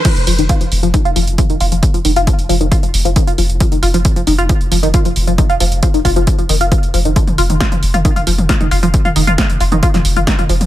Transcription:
<<
  \new Staff \with { instrumentName = "Synth arpeggio sound" } { \clef bass \time 4/4 \key ees \mixolydian \tempo 4 = 135 f16 r16 f16 ees16 f'16 f16 r16 f16 ees16 f'16 f16 r16 f16 ees16 f'16 f16 | r16 f16 ees16 f'16 f16 r16 f16 ees16 f'16 f16 r16 f16 ees16 f'16 f16 r16 | f16 ees16 f'16 f16 r16 f16 ees16 f'16 f16 r16 f16 ees16 f'16 f16 r16 f16 | ees16 f'16 f16 r16 f16 ees16 f'16 f16 r16 f16 ees16 f'16 f16 r16 f16 ees16 |
f16 r16 f'16 ees16 f'16 f16 r16 f'16 ees16 f'16 f16 r16 f'16 ees16 f'16 f16 | r16 f'16 ees16 f'16 f16 r16 f'16 ees16 f'16 f16 r16 f'16 ees16 f'16 f16 r16 | }
  \new Staff \with { instrumentName = "Sub bass" } { \clef bass \time 4/4 \key ees \mixolydian r16 f,,16 f,,16 f,,16 r16 f,,16 f,,16 f,,16 r16 f,,16 f,,16 f,,16 r16 f,,16 f,,16 f,,16 | r16 f,,16 f,,16 f,,16 r16 f,,16 f,,16 f,,16 r16 f,,16 f,,16 f,,16 r16 f,,16 f,,16 f,,16 | r16 f,,16 f,,16 f,,16 r16 f,,16 f,,16 f,,16 r16 f,,16 f,,16 f,,16 r16 f,,16 f,,16 f,,16 | r16 f,,16 f,,16 f,,16 r16 f,,16 f,,16 f,,16 r16 f,,16 f,,16 f,,16 r16 f,,16 f,,16 f,,16 |
r16 f,,16 f,,16 f,,16 r16 f,,16 f,,16 f,,16 r16 f,,16 f,,16 f,,16 r16 f,,16 f,,16 f,,16 | r16 f,,16 f,,16 f,,16 r16 f,,16 f,,16 f,,16 r16 f,,16 f,,16 f,,16 r16 f,,16 f,,16 f,,16 | }
  \new DrumStaff \with { instrumentName = "Drums" } \drummode { \time 4/4 <cymc hh bd>16 hh16 hho16 hh16 <hh bd>16 hh16 hho16 hh16 <hh bd>16 hh16 hho16 hh16 <hh bd>16 hh16 hho16 hh16 | <hh bd>16 hh16 hho16 hh16 <hh bd>16 hh16 hho16 hh16 <hh bd>16 hh16 hho16 hh16 <hh bd>16 hh16 hho16 hh16 | <hh bd>16 hh16 hho16 hh16 <hh bd>16 hh16 hho16 hh16 <hh bd>16 hh16 hho16 hh16 <hh bd>16 hh16 hho16 hh16 | <hh bd>16 hh16 hho16 hh16 <hh bd>16 hh16 <hho bd>16 hh16 <hh bd>16 hh16 hho16 hh16 <hh bd>16 hh16 hho16 hh16 |
<hh bd>16 <hh toml>16 hho16 <hh toml>16 <hh bd sn>16 <hh toml>16 hho16 <hh toml>16 <hh bd>16 <hh toml>16 hho16 <hh toml>16 <hh bd sn>16 <hh toml>16 hho16 <hh toml>16 | <hh bd>16 <hh toml>16 hho16 <hh toml>16 <hh bd sn>16 <hh toml>16 hho16 <hh toml>16 <hh bd>16 <hh sn toml>16 hho16 <hh toml>16 <hh bd sn>16 <hh toml>16 hho16 <hh toml>16 | }
>>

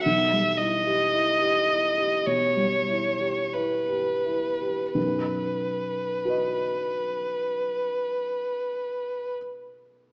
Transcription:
<<
  \new Staff \with { instrumentName = "Violin" } { \time 4/4 \key b \major \tempo 4 = 46 e''8 dis''4. cis''4 b'4 | b'1 | }
  \new Staff \with { instrumentName = "Grand piano" } { \time 4/4 \key b \major << { r1 | r4 <fis' b' dis''>2. | } \\ { b,,16 g16 e'16 g'16 e'16 g'16 e'16 g'16 b,16 g16 e'16 g'16 e'16 g'16 e'16 g'16 | <b,, fis,>1 | } >> }
>>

